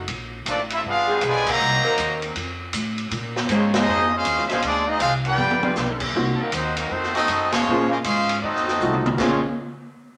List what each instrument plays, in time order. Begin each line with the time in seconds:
0.08 upright bass A#1, kick, ride
0.46 upright bass A1, trombone section F3 A3 D4, trumpet section A#3 F4 A4 D5, kick, hi-hat pedal, ride
0.70 trombone section E4, ride
0.76 trumpet section C4 F4 A4 E5
0.84 upright bass G1, trombone section B3 D4 F4, kick
0.89 trumpet section D4 G#4 B4 F5
1.07 saxophone section G3 B3 F4 G#4
1.21 upright bass B1, trombone section D3 F3 G#3, kick, hi-hat pedal, ride
1.27 trumpet section F4 B4 D5 G#5
1.46 trombone section D#3 F#3 A#3, kick, crash
1.51 trumpet section F#4 C5 D#5 A#5
1.60 upright bass C2
1.84 saxophone section F#3 C4 D#4 A#4
1.98 upright bass D#2, kick, hi-hat pedal, ride
2.22 ride
2.35 upright bass F2, kick, ride
2.73 upright bass A2, kick, hi-hat pedal, ride
2.98 ride
3.11 upright bass A#2, kick, ride
3.36 snare
3.48 upright bass G#2, trombone section F3 G#3 C#4, saxophone section A#3 C#4 G#4 C5, kick, hi-hat pedal, ride
3.53 trumpet section G#3 C4 F4 C#5
3.74 trombone section F3 G#3 D#4, snare, ride
3.78 trumpet section C#4 G#4 C5 D#5
3.87 upright bass F2, saxophone section A#3 C#4 G#4 C5
4.13 trombone section G#3 C#4 F4, trumpet section C#4 G#4 C5 F5
4.25 upright bass D#2, kick, hi-hat pedal, ride
4.38 upright bass C#2, snare
4.46 trombone section G#3 C#4 F4, saxophone section D4 F4, trumpet section E5, snare, ride
4.50 upright bass A#1, saxophone section G#3 C5, trumpet section C#4 G#4 C5 F5
4.62 upright bass D2, trombone section F3 G#3 D4, trumpet section C4 F4 G#4 D5, kick, ride
4.87 trumpet section C4 F4 G#4 D#5, trombone section D#4
5.00 upright bass C2, trombone section G#3 C4 F4, trumpet section D4 G#4 C5 F5, kick, hi-hat pedal, ride
5.24 trombone section B3 D4 G4, trumpet section F4 B4 D5 G5, ride
5.38 upright bass G1, high tom
5.51 high tom
5.63 saxophone section G3 D4 F4 B4, high tom
5.75 upright bass B1, snare, hi-hat pedal
6.00 kick, crash
6.14 upright bass C2, grand piano A#3 C4 D#4 F#4 C5, kick
6.35 trumpet section A4
6.40 trombone section D#3 F#3 A#3, trumpet section F#3 C4 D#4 A#4, muted upright bass stroke
6.52 upright bass D#2, trombone section D#3 F#3 C4, trumpet section A#3 D#4 F#4 C5, kick, hi-hat pedal, ride
6.75 trombone section D#3 F#3 A#3, trumpet section F#3 C4 D#4 A#4, ride
6.89 upright bass F2, trombone section D#3 A3 C4, trumpet section A3 D#4 F#4 C5, kick
7.03 snare
7.14 trombone section A3 C4 D#4, trumpet section C4 F#4 A4 D#5, snare, ride
7.28 upright bass F#2, kick, hi-hat pedal, ride
7.50 trombone section F3 G#3 C#4, trumpet section G#3 F4 C5 C#5, snare, ride
7.68 upright bass A#2, grand piano A#3 C#4 F4 G#4 C5
7.88 trombone section C#3 F3 A#3, trumpet section C#4 F4 A#4
7.92 trumpet section G#3
8.02 upright bass G#2, trombone section G#3 C#4 F4, trumpet section C#4 G#4 C5 F5, kick, hi-hat pedal, ride
8.29 ride
8.42 upright bass F2, trombone section A3 C4 D#4, trumpet section C4 F#4 A4 D5 D#5, kick
8.55 snare
8.68 snare
8.80 upright bass C2, grand piano A3 D#4 F4 F#4 A4, hi-hat pedal
8.93 mid tom
9.06 mid tom
9.18 upright bass A#1, trombone section A#2 F3 G#3 C#4, trumpet section G#3 C4 F4 C#5, grand piano A#3 C#4 F4 G#4 C5, kick, snare, crash